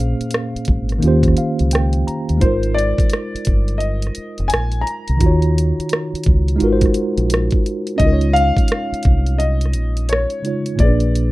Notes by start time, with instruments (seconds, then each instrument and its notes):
Already playing: fingered electric bass A#1, tine electric piano A#2 A#3 C#4 G#4 C5, grand piano F5
0.00 closed hi-hat
0.21 muted fingered electric bass stroke, closed hi-hat
0.31 cross-stick, closed hi-hat
0.55 muted fingered electric bass stroke, closed hi-hat
0.65 fingered electric bass G#1, kick, closed hi-hat
0.89 cross-stick, closed hi-hat
0.99 tine electric piano D#3 A#3 C#4, closed hi-hat
1.03 fingered electric bass D#2, tine electric piano F4 G4
1.08 tine electric piano C5
1.23 kick, closed hi-hat
1.28 cross-stick
1.37 tine electric piano F5, muted fingered electric bass stroke, closed hi-hat
1.59 fingered electric bass C#2, closed hi-hat
1.71 tine electric piano G5, cross-stick, closed hi-hat
1.93 closed hi-hat
2.07 tine electric piano A#5, closed hi-hat
2.29 fingered electric bass D#2, closed hi-hat
2.37 tine electric piano G#3 D#4, grand piano C5
2.41 fingered electric bass G#1, tine electric piano F4 A#4, kick, closed hi-hat
2.47 tine electric piano C5
2.63 closed hi-hat
2.74 grand piano D5
2.79 closed hi-hat
2.98 muted fingered electric bass stroke, kick, closed hi-hat
3.10 cross-stick, closed hi-hat
3.35 muted fingered electric bass stroke, closed hi-hat
3.45 fingered electric bass G1, kick, closed hi-hat
3.68 closed hi-hat
3.78 grand piano D#5, closed hi-hat
4.02 closed hi-hat
4.07 cross-stick
4.15 muted fingered electric bass stroke, closed hi-hat
4.38 fingered electric bass F1, closed hi-hat
4.48 grand piano G#5, closed hi-hat
4.53 fingered electric bass A#1, cross-stick
4.72 closed hi-hat
4.81 grand piano A#5
4.87 closed hi-hat
5.08 fingered electric bass C2, closed hi-hat
5.17 tine electric piano D#3 D#4, closed hi-hat
5.21 fingered electric bass D#2, tine electric piano F4 F#4, kick
5.26 tine electric piano C#5
5.42 closed hi-hat
5.58 closed hi-hat
5.79 muted fingered electric bass stroke, closed hi-hat
5.89 cross-stick, closed hi-hat
6.14 muted fingered electric bass stroke, closed hi-hat
6.24 fingered electric bass C#2, kick, closed hi-hat
6.48 closed hi-hat
6.56 tine electric piano G#3 D#4
6.60 fingered electric bass G#1, tine electric piano F4 F#4 A#4, closed hi-hat
6.66 tine electric piano B4
6.73 tine electric piano C5
6.81 kick, closed hi-hat
6.86 cross-stick
6.94 closed hi-hat
7.18 fingered electric bass A#1, closed hi-hat
7.30 cross-stick, closed hi-hat
7.51 kick, closed hi-hat
7.66 closed hi-hat
7.87 closed hi-hat
7.96 fingered electric bass C#2, tine electric piano G#3 C#4, grand piano D#5, kick, closed hi-hat
8.02 tine electric piano D#4 F4
8.06 tine electric piano A#4
8.13 tine electric piano C#5
8.21 closed hi-hat
8.33 grand piano F5, closed hi-hat
8.57 muted fingered electric bass stroke, kick, closed hi-hat
8.68 cross-stick, closed hi-hat
8.92 muted fingered electric bass stroke, closed hi-hat
9.03 fingered electric bass C2, kick, closed hi-hat
9.26 closed hi-hat
9.38 grand piano D#5, closed hi-hat
9.61 closed hi-hat
9.66 cross-stick
9.73 fingered electric bass A#1, closed hi-hat
9.97 closed hi-hat
10.09 grand piano C#5, cross-stick, closed hi-hat
10.30 closed hi-hat
10.42 tine electric piano C#3 G#3 D#4, closed hi-hat
10.46 tine electric piano F4 C#5
10.66 closed hi-hat
10.76 tine electric piano A#2 A#3, kick, closed hi-hat
10.80 fingered electric bass A#1, tine electric piano C#4 G#4, grand piano D5
10.85 tine electric piano D4 B4
11.00 closed hi-hat
11.15 closed hi-hat